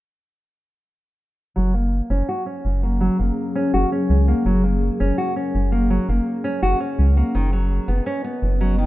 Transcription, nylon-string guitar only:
1.56 1.72 F#3 medium
1.74 2.08 A#3 medium
2.10 2.26 C#4 medium
2.29 2.45 F#4 medium
2.46 2.80 C#4 medium
2.83 2.99 A#3 medium
3.01 3.17 F#3 medium
3.19 3.53 A#3 medium
3.55 3.71 C#4 medium
3.74 3.89 F#4 medium
3.92 4.26 C#4 medium
4.28 4.44 A#3 medium
4.46 4.62 F#3 medium
4.64 4.98 A#3 medium
5.00 5.16 C#4 medium
5.18 5.34 F#4 medium
5.36 5.70 C#4 medium
5.72 5.88 A#3 medium
5.90 6.06 F#3 medium
6.09 6.43 A#3 medium
6.44 6.60 C#4 medium
6.63 6.78 F#4 medium
6.80 7.14 C#4 medium
7.17 7.33 A#3 medium
7.35 7.51 D#3 medium
7.53 7.87 F#3 medium
7.88 8.04 B3 medium
8.06 8.23 C#4 medium
8.24 8.59 B3 medium
8.61 8.77 F#3 medium
8.78 8.86 D#3 medium

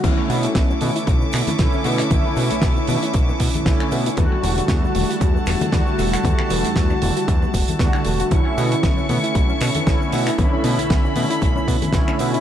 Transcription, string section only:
0.04 4.14 B3 medium
0.04 4.14 A4 medium
0.04 4.14 E5 medium
0.04 4.14 C#6 medium
0.04 4.14 D6 medium
4.17 8.28 E4 medium
4.17 8.28 F#5 medium
4.17 8.27 A5 medium
8.32 12.40 B3 medium
8.32 12.40 A4 medium
8.32 12.40 E5 medium
8.32 10.37 C#6 medium
10.39 12.40 B5 medium

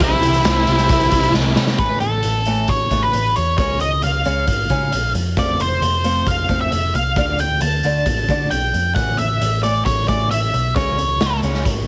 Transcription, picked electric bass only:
0.00 0.21 C2 medium
0.23 0.43 C2 medium
0.46 0.66 C2 medium
0.67 0.88 C2 medium
0.90 1.10 C2 medium
1.12 1.32 C2 medium
1.34 1.55 C2 medium
1.56 1.77 C3 medium
1.79 1.99 A1 medium
2.02 2.22 A1 medium
2.24 2.64 A1 medium
2.69 2.89 A1 medium
2.90 3.11 A1 medium
3.14 3.34 A1 medium
3.37 3.56 E2 medium
3.58 3.78 C#2 medium
3.81 4.01 C#2 medium
4.04 4.23 C#2 medium
4.26 4.46 C#2 medium
4.48 4.68 G#1 medium
4.70 4.90 C#3 medium
4.92 5.12 A#1 medium
5.14 5.35 F2 medium
5.37 5.57 F1 medium
5.59 5.80 F1 medium
5.82 6.22 F1 medium
6.26 6.47 F1 medium
6.49 6.69 F1 medium
6.71 6.92 F1 medium
6.94 7.16 C2 medium
7.16 7.36 D2 medium
7.39 7.59 D2 medium
7.61 7.81 D2 medium
7.84 8.04 D2 medium
8.06 8.26 A1 medium
8.29 8.49 D3 medium
8.52 8.71 B1 medium
8.73 8.93 F2 medium
8.96 9.16 A1 medium
9.18 9.38 A1 medium
9.41 9.81 A1 medium
9.86 10.06 A1 medium
10.08 10.28 A1 medium
10.31 10.51 A1 medium
10.54 10.73 B1 medium
10.98 11.18 C#2 medium
11.20 11.40 C#2 medium
11.43 11.63 C#2 medium
11.66 11.86 G#1 medium

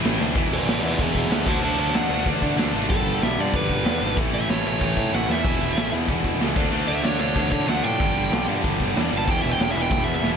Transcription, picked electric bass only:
0.04 0.18 A1 loud
0.20 0.34 D2 medium
0.36 0.50 E1 medium
0.51 0.65 E1 loud
0.67 0.81 A1 medium
0.83 0.97 E2 medium
0.99 1.13 E1 medium
1.15 1.29 E1 medium
1.31 1.45 D2 loud
1.47 1.61 D2 loud
1.62 1.76 D2 medium
1.78 1.92 D2 medium
1.93 2.08 D2 medium
2.09 2.24 D2 loud
2.26 2.40 D2 loud
2.42 2.56 D3 medium
2.57 2.71 D2 medium
2.73 2.88 G#1 loud
2.90 3.04 G1 medium
3.05 3.20 G1 loud
3.22 3.36 B1 medium
3.38 3.52 G2 medium
3.54 3.68 G1 medium
3.70 3.84 G1 medium
3.85 3.99 E2 medium
4.01 4.15 G#1 medium
4.18 4.32 A1 medium
4.33 4.47 A1 medium
4.49 4.63 A1 medium
4.65 4.79 A1 medium
4.81 4.95 A1 medium
4.97 5.11 A2 medium
5.13 5.27 A1 medium
5.29 5.43 E2 loud
5.45 5.59 E1 medium
5.61 5.75 E1 loud
5.76 5.91 A1 medium
5.92 6.06 E2 loud
6.09 6.23 E1 loud
6.24 6.39 E1 medium
6.40 6.54 C#2 medium
6.57 6.71 D2 loud
6.72 6.86 D2 medium
6.88 7.02 D2 medium
7.04 7.18 D2 medium
7.20 7.34 D2 loud
7.36 7.50 D2 medium
7.52 7.66 D3 medium
7.68 7.82 D2 medium
7.84 7.98 A2 medium
8.00 8.14 G1 loud
8.16 8.30 G1 medium
8.32 8.46 B1 loud
8.48 8.62 G2 loud
8.64 8.78 G1 medium
8.80 8.94 G1 loud
8.96 9.10 E2 loud
9.12 9.26 G1 loud
9.28 9.41 E1 medium
9.44 9.57 E1 medium
9.59 9.73 E1 loud
9.76 9.89 E1 medium
9.92 10.05 E1 loud
10.07 10.21 E2 medium
10.23 10.37 E1 medium

